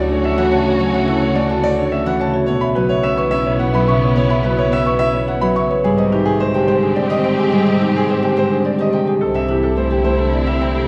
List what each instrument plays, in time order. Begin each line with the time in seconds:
Already playing: double bass section D2, harp C#3 D3 E3 F#3 A3 C#4, string section C#4 F#4, marimba C#5, grand piano D5
0.09 marimba D4, grand piano C#5
0.24 harp C#4, grand piano E5
0.38 harp E3, marimba F#4, grand piano F#5
0.52 harp C#3, marimba C#5, grand piano A5
0.66 marimba F#4, grand piano C#5
0.79 harp F#3, grand piano C#5
0.94 harp C#3, marimba C#5, grand piano F#5
1.07 harp E3, marimba E4, grand piano A4
1.22 grand piano C#5, marimba C#5
1.35 harp A3, grand piano D5
1.49 harp D3, marimba F#4, grand piano A5
1.63 harp A3, marimba C#5, grand piano D5
1.78 marimba D4, grand piano C#5
1.92 harp C#4, grand piano E5
2.06 harp E3, marimba F#4, grand piano F#5
2.20 harp C#3, marimba C#5, grand piano A5
2.34 marimba F#4, grand piano C#5
2.46 double bass section B1, string section B3 E4, harp B3, grand piano C#5
2.61 harp C#3, marimba E5, grand piano B5
2.75 harp F#3, marimba F#4, grand piano B4
2.89 grand piano C#5, marimba E5
3.03 harp C#4, grand piano E5
3.18 harp E3, marimba B4, grand piano C#6
3.31 harp C#4, grand piano E5, marimba E5
3.46 marimba E4, grand piano C#5
3.59 harp E4, grand piano F#5
3.74 harp F#3, marimba B4, grand piano B5
3.88 harp C#3, marimba E5, grand piano C#6
4.02 marimba B4, grand piano C#5
4.16 harp B3, grand piano C#5
4.30 harp C#3, marimba E5, grand piano B5
4.43 harp F#3, marimba F#4, grand piano B4
4.57 grand piano C#5, marimba E5
4.72 harp C#4, grand piano E5
4.85 harp E3, marimba B4, grand piano C#6
4.99 harp C#4, grand piano E5, marimba E5
5.14 grand piano C#5
5.28 harp E4, grand piano F#5
5.41 harp F#3, marimba B4, grand piano B5
5.56 harp C#3, marimba E5, grand piano C#6
5.70 marimba B4, grand piano C#5
5.84 double bass section G#2, harp G3, string section C4 G4, grand piano G#4
5.98 harp C3, marimba C5, grand piano D#5
6.12 harp D#3, marimba D#4, grand piano G4
6.25 grand piano G#4, marimba C5
6.40 harp G#3, grand piano C5
6.54 harp D3, marimba G4, grand piano G5
6.67 harp G#3, grand piano C5, marimba C5
6.82 marimba D4, grand piano G#4
6.96 harp C4, grand piano D5
7.10 harp D#3, marimba G4, grand piano D#5
7.24 harp C3, marimba C5, grand piano G5
7.39 marimba G4, grand piano G#4
7.52 harp G3, grand piano G#4
7.66 harp C3, marimba C5, grand piano D#5
7.80 harp D#3, marimba D#4, grand piano G4
7.94 grand piano G#4, marimba C5
8.09 harp G#3, grand piano C5
8.22 harp D3, marimba G4, grand piano G5
8.37 harp G#3, marimba C5, grand piano C5
8.50 marimba D4, grand piano G#4
8.65 harp C4, grand piano D5
8.79 harp D#3, marimba G4, grand piano D#5
8.93 harp C3, marimba C5, grand piano G5
9.07 marimba G4, grand piano G#4
9.20 double bass section C2, string section C4 E4, grand piano A4
9.34 harp C3, marimba C5, grand piano E5
9.48 harp E3, marimba E4, grand piano G4
9.63 grand piano A4, marimba C5
9.77 harp A3, grand piano C5
9.91 harp D3, marimba G4, grand piano G5
10.04 harp A3, grand piano C5, marimba C5
10.19 marimba D4, grand piano A4
10.33 harp C4, grand piano D5
10.47 harp E3, grand piano E5
10.60 harp C3, marimba C5, grand piano G5
10.75 marimba G4, grand piano A4